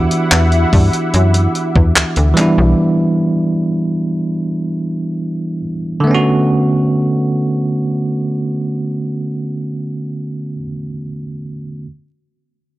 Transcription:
Already playing: E3 B3 D4 E4 F#4 G4 E5 F#5 D6
0.11 closed hi-hat
0.32 E2, clap, closed hi-hat
0.52 closed hi-hat
0.73 G2, kick, open hi-hat
0.93 closed hi-hat
1.14 F#2, closed hi-hat
1.34 closed hi-hat
1.55 closed hi-hat
1.76 E2, kick
1.96 D2, clap, closed hi-hat
2.16 D2, closed hi-hat
2.34 E3 G3 B3, clap, closed hi-hat
2.39 D4 E4
2.58 B1
6.00 D3 A3
6.07 B3 C#4
6.14 F#4

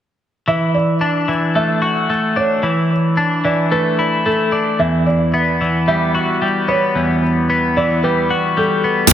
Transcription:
0.48 E3 E5
0.74 D5
1.01 D4
1.28 E3
1.55 A3 E5
1.82 F#4
2.10 A3
2.36 D4 C#5
2.63 E3
3.17 D4
3.44 E3 D5
3.72 A3 B4
3.99 E4
4.25 A3 A4
4.52 D4
4.79 E2 E5
5.07 D5
5.34 B3
5.61 E3
5.88 G3 E5
6.15 F#4
6.42 G3
6.68 B3 C#5
6.95 E2
7.50 B3
7.77 E3 D5
8.03 G3 B4
8.30 F#4
8.57 G3 A4
8.84 B3

